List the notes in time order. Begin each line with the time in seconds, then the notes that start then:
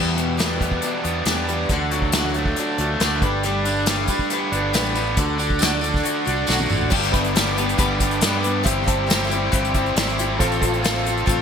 Already playing: E2 E3 G3 B3 D4 G4 B4 E5 G5 D6
0.16 B2 B3 D4 G4, closed hi-hat
0.37 E3 G3 B3 D4 G4, snare, closed hi-hat
0.59 B3 D4 G4, kick, closed hi-hat
0.72 kick
0.82 G3 B3 D4 G4, closed hi-hat
1.04 E2 B3 D4 G4, closed hi-hat
1.25 E2 E3 G3 B3 D4 G4, snare, closed hi-hat
1.48 G3 B3 D4 G4, closed hi-hat
1.69 D2 D3 E3 A3 D4 F#4 A4 D5 F#5, kick, closed hi-hat
1.91 F#3 A3 D4 F#4 D5, closed hi-hat
2.02 kick
2.12 D3 E3 F#3 A3 D4 F#4 D5, snare, closed hi-hat
2.34 A3 D4 F#4 D5, closed hi-hat
2.46 kick
2.56 A3 D4 F#4 D5, closed hi-hat
2.78 D2 A3 D4 F#4 D5, closed hi-hat
3.00 D2 D3 E3 A3 D4 F#4 D5, snare, closed hi-hat
3.21 G1 G3 D4 G4 B4 D5 G5 B5, kick, closed hi-hat
3.25 A3
3.43 G2 G3 A3 D4 G4 B4, closed hi-hat
3.65 A3 D4 G4 B4, closed hi-hat, tambourine
3.86 G2 G3 A3 D4 G4 B4, snare, closed hi-hat, tambourine
4.07 D4 G4 B4, kick, closed hi-hat, tambourine
4.12 A3
4.19 kick
4.30 A3 B3 D4 G4 B4, closed hi-hat
4.52 G1 A3 D4 G4 B4, closed hi-hat
4.73 A1 G2 G3 A3 B3 D4 G4 B4, snare, closed hi-hat, tambourine
4.85 tambourine
4.95 G3 A3 D4 G4 B4, closed hi-hat, tambourine
5.07 tambourine
5.17 D2 D3 F#3 A3 D4 F#4 D5 F#5 D6, kick, closed hi-hat, tambourine
5.29 tambourine
5.38 A3 D4 F#4 D5, closed hi-hat, tambourine
5.50 kick, tambourine
5.59 D3 F#3 A3 D4 F#4 D5, snare, closed hi-hat, tambourine
5.70 tambourine
5.81 A3 D4 F#4 D5, closed hi-hat, tambourine
5.92 kick, snare, tambourine
6.03 A3 D4 F#4 D5, closed hi-hat, tambourine
6.14 tambourine
6.25 C2 A3 D4 F#4 D5, closed hi-hat, tambourine
6.36 tambourine
6.47 B1 D3 F#3 A3 D4 F#4 D5, snare, tambourine
6.58 high tom, tambourine
6.68 A1 D3 A3 D4 F#4 D5, mid tom, tambourine
6.81 floor tom, tambourine
6.90 G1 G2 D3 G3 B3 D4 G4 B4 D5 G5 D6, kick, crash
7.03 closed hi-hat
7.10 D4 G4 B4 D5 E5, kick, closed hi-hat
7.15 G3 B3
7.25 closed hi-hat
7.35 G3 B3 D4 G4 B4, snare, closed hi-hat
7.48 snare
7.56 G3 B3 D4 G4 B4, closed hi-hat
7.69 closed hi-hat
7.78 G1 G2 D3 G3 B3 D4 G4 B4, kick, closed hi-hat
7.98 G3 B3 D4 G4 B4, kick, closed hi-hat
8.11 closed hi-hat
8.21 G2 G3 B3 D4 G4 B4, snare, closed hi-hat
8.43 G3 B3 D4 B4, closed hi-hat
8.63 G1 G2 E3 G3 C4 E4 G4 C5 E5 G5 C6, kick, closed hi-hat
8.84 G3 C4 E4 G4 C5 E5 A5, kick, closed hi-hat
9.07 G3 C4 E4 G4, closed hi-hat
9.11 snare
9.23 snare
9.29 G3 C4 E4 G4, closed hi-hat
9.52 G1 G2 E3 G3 C4 E4 G4, kick, closed hi-hat
9.65 closed hi-hat
9.74 G3 C4 E4 G4, kick, closed hi-hat
9.86 closed hi-hat
9.96 G#1 G3 C4 E4 G4, snare, closed hi-hat
10.09 closed hi-hat
10.18 G3 C4 E4 G4, closed hi-hat
10.37 A1 A2 F3 A3 C4 A4 C5 F5 A5, kick, closed hi-hat
10.41 F4 A4
10.52 closed hi-hat
10.60 C4 F4 A4 C5 F5 A5, kick, closed hi-hat
10.74 closed hi-hat
10.81 F3 A3 C4 F4, closed hi-hat
10.85 A4, snare
10.97 snare
11.04 C4 F4 A4, closed hi-hat
11.17 closed hi-hat
11.25 A1 A2 F3 A3 C4 F4 A4, kick
11.29 closed hi-hat